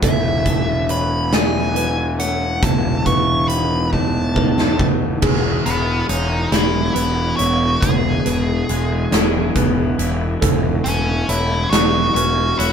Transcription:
Already playing: ambient pad E3 G#5
0.01 picked electric bass E1, clean electric guitar E3, ambient pad C#4 A4 F#5, felt piano A4, lead electric guitar E5, kick, closed hi-hat
0.45 clean electric guitar A3, kick, closed hi-hat
0.89 clean electric guitar E3, felt piano C#5, lead electric guitar B5, closed hi-hat
1.33 clean electric guitar A3, lead electric guitar G#5, snare, closed hi-hat
1.75 clean electric guitar E3, felt piano B4, closed hi-hat
2.19 clean electric guitar A3, felt piano C#5, lead electric guitar F#5, closed hi-hat
2.61 picked electric bass E1, clean electric guitar E2, ambient pad B3 C#5 D#5, lead electric guitar A5, kick, closed hi-hat
3.06 clean electric guitar B2, felt piano B4, lead electric guitar C#6, kick, closed hi-hat
3.48 clean electric guitar D#3, lead electric guitar B5, closed hi-hat
3.92 clean electric guitar A3, lead electric guitar A5, kick
4.35 clean electric guitar D#3, felt piano B4, kick
4.58 snare
4.79 clean electric guitar A3, kick
5.21 picked electric bass E1, clean electric guitar E2, ambient pad E3 G#3 B3, felt piano G#4, kick, crash
5.65 picked electric bass E1, clean electric guitar B2, lead electric guitar B3, closed hi-hat
6.08 picked electric bass E1, clean electric guitar G#3, lead electric guitar D#4, felt piano C#5, closed hi-hat
6.52 picked electric bass E1, clean electric guitar E4, lead electric guitar E4, snare, closed hi-hat
6.94 picked electric bass E1, clean electric guitar B3, lead electric guitar E4, felt piano B4, closed hi-hat
7.36 picked electric bass E1, clean electric guitar E4, lead electric guitar F#4, felt piano C#5, closed hi-hat
7.81 picked electric bass E1, clean electric guitar E2, lead electric guitar G#4, kick, closed hi-hat
8.25 picked electric bass E1, clean electric guitar B2, felt piano B4, closed hi-hat
8.69 picked electric bass E1, clean electric guitar G#3, closed hi-hat
9.12 picked electric bass E1, clean electric guitar E4, snare, closed hi-hat
9.55 picked electric bass E1, clean electric guitar B3, felt piano B4, kick, closed hi-hat
9.99 picked electric bass E1, clean electric guitar E4, closed hi-hat
10.41 picked electric bass E1, clean electric guitar E3, ambient pad F#3 A3, felt piano A4, kick, closed hi-hat
10.84 picked electric bass E1, clean electric guitar A3, lead electric guitar C#4, closed hi-hat
11.28 picked electric bass E1, clean electric guitar A3, lead electric guitar E4, felt piano C#5, closed hi-hat
11.70 picked electric bass E1, lead electric guitar F#4, clean electric guitar F#4, snare, closed hi-hat
12.14 picked electric bass E1, clean electric guitar C#4, lead electric guitar F#4, felt piano B4, closed hi-hat
12.58 picked electric bass E1, lead electric guitar E4, clean electric guitar F#4, felt piano C#5, closed hi-hat

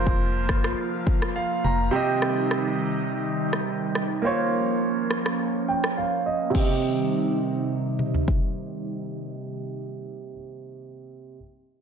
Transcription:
Already playing: fm bass F1, grand piano F3 F4 A#4 C5, analog synth pad F3 A#3 F4
0.07 kick
0.49 fm bass G1, kick, cross-stick
0.64 cross-stick
1.07 kick
1.22 cross-stick
1.36 grand piano F5
1.64 fm bass F1, grand piano A#5
1.91 grand piano C3 C4 G4, analog synth pad D#3 G3 D#4
1.96 grand piano D#5
2.22 cross-stick
2.51 cross-stick
3.53 cross-stick
3.95 cross-stick
4.22 analog synth pad F3 A#3 C#4, grand piano A#3 F4 C5
4.26 grand piano C#5
5.11 cross-stick
5.26 cross-stick
5.68 grand piano G5
5.84 cross-stick
5.97 grand piano F5
6.26 grand piano D#5
6.50 grand piano C3 C4
6.55 analog synth pad C3 D#3 G3 D#4, grand piano G4, kick, crash
6.59 grand piano D#5
7.99 mid tom
8.14 floor tom
8.28 kick

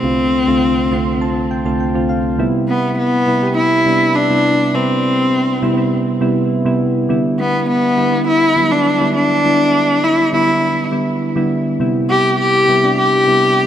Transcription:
Already playing: cello C4
0.03 synth keys C2 D3 A3 C4 F4
0.47 synth keys C2 D3 A3 C4 F4
0.91 synth keys C2 D3 A3 C4 F4 C6
1.21 synth keys A5
1.51 synth keys G5
1.65 synth keys C2 D3 A3 C4 F4 A5
1.80 synth keys G5
1.94 synth keys C2 D3 A3 C4 F4
2.09 synth keys F5
2.38 synth keys C3 G3 B3 E4
2.69 cello B3
2.98 cello B3
3.27 synth keys C3 G3 B3 E4
3.42 synth keys C3 G3 B3 G4
3.57 cello E4
3.86 synth keys C3 G3 B3 D4
3.93 synth keys E4
4.16 cello D4
4.30 synth keys C3 G3 B3 E4
4.74 synth keys C3 G3 E4 B4, cello C4
5.62 synth keys C3 G3 B3 E4
5.77 synth keys C3 G3 B3 E4
6.21 synth keys C3 G3 B3 E4
6.65 synth keys C3 G3 B3 E4
7.09 synth keys D3 G3 B3 E4
7.39 cello B3
7.69 cello B3
7.97 synth keys D3 G3 B3 E4
8.12 synth keys D3 G3 B3 E4
8.27 cello E4
8.56 synth keys D3 F#3 B3 E4
8.63 synth keys G3
8.71 cello D4
9.00 synth keys D3 G3 B3 E4
9.15 cello D4
9.44 synth keys D3 G3 B3 E4
10.04 cello E4
10.33 synth keys D3 G3 B3 E4, cello E4
10.47 synth keys D3 G3 B3 E4
10.91 synth keys D3 G3 B3 E4
11.36 synth keys D3 G3 B3 E4
11.80 synth keys C3 G3 B3 E4
12.10 cello G4
12.40 cello G4
12.68 synth keys C3 G3 B3 E4
12.83 synth keys C3 G3 B3 D4
12.98 cello G4
13.27 synth keys C3 G3 B3 E4

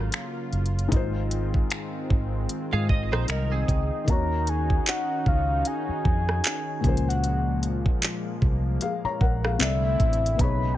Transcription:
Already playing: analog synth pad C#3 F#3 A#3 F4, felt piano F#3 C#4 F4 G#4 A#4
0.12 finger snap, closed hi-hat
0.53 fingered electric bass F#1, closed hi-hat
0.66 closed hi-hat
0.79 closed hi-hat
0.88 fingered electric bass G#1, felt piano G#2 G#3, analog synth pad D#3 G#3 C4, kick, closed hi-hat
0.92 felt piano D#4 F4 C5
1.31 closed hi-hat
1.54 kick
1.70 finger snap, closed hi-hat
2.10 fingered electric bass G#1, kick
2.49 closed hi-hat
2.73 fingered electric bass G#2, clean electric guitar G#4 F5
2.89 fingered electric bass G#1, clean electric guitar D#5, kick
3.12 fingered electric bass A#1, clean electric guitar D#4 C5, cross-stick
3.28 fingered electric bass C2, clean electric guitar A#4, soft synth lead D#5, finger snap, closed hi-hat
3.52 clean electric guitar C4 G#4
3.68 fingered electric bass C#2, kick, closed hi-hat
4.04 fingered electric bass D#2, felt piano D#3 A#3 D#4, analog synth pad D#3 C#4 D#4 F#4, kick, closed hi-hat
4.10 felt piano F#4 C#5, soft synth lead A#5
4.47 soft synth lead G#5, closed hi-hat
4.70 kick
4.86 soft synth lead F#5, clap, closed hi-hat
5.26 fingered electric bass C#2, soft synth lead F5, kick
5.65 soft synth lead G#5, closed hi-hat
5.89 muted fingered electric bass stroke
6.05 fingered electric bass F2, kick
6.29 cross-stick
6.44 clap, closed hi-hat
6.81 fingered electric bass C#2, felt piano A#2 F3 C#4, analog synth pad A#2 F3 G#3 A#3, kick, closed hi-hat
6.85 felt piano G#4 A#4 C5
6.97 closed hi-hat
7.08 soft synth lead F#5, closed hi-hat
7.24 closed hi-hat
7.63 closed hi-hat
7.86 kick
8.02 clap, closed hi-hat
8.42 fingered electric bass C2, kick
8.81 felt piano G#4 F5, closed hi-hat
9.04 felt piano C#5 A#5, muted fingered electric bass stroke
9.21 fingered electric bass A#1, felt piano A#4 F#5, kick
9.44 felt piano G#4 F5, cross-stick
9.59 fingered electric bass C2, felt piano C3 C4 E4 A4, analog synth pad D3 A3 C4 E4, soft synth lead E5, clap, closed hi-hat
9.63 felt piano D5
10.00 fingered electric bass A1, kick, closed hi-hat
10.13 closed hi-hat
10.26 closed hi-hat
10.36 fingered electric bass B1, felt piano B2 B3 D#4, analog synth pad C#3 G#3 B3 D#4, kick, closed hi-hat
10.40 felt piano G#4 C#5, soft synth lead B5
10.74 soft synth lead G5

